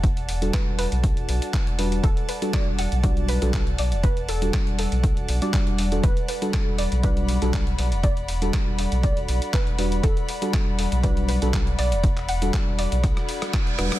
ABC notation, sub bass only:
X:1
M:4/4
L:1/16
Q:"Swing 16ths" 1/4=120
K:Em
V:1 name="Sub bass" clef=bass
E,,,4 z E,,,2 B,,,2 E,,, B,,, z2 E,,,3 | E,,, z4 E,,,2 B,,,4 B,,,3 B,,, E,,,- | E,,,4 z E,,,2 B,,,2 E,,, B,,, z2 E,,,3 | E,,, z4 E,,,2 B,,,4 B,,,3 B,,, E,,,- |
E,,,4 z E,,,2 B,,,2 E,,, B,,, z2 E,,,3 | E,,, z4 E,,,2 B,,,4 B,,,3 B,,, E,,,- | E,,,4 z E,,,2 B,,,2 z4 z E,,, z |]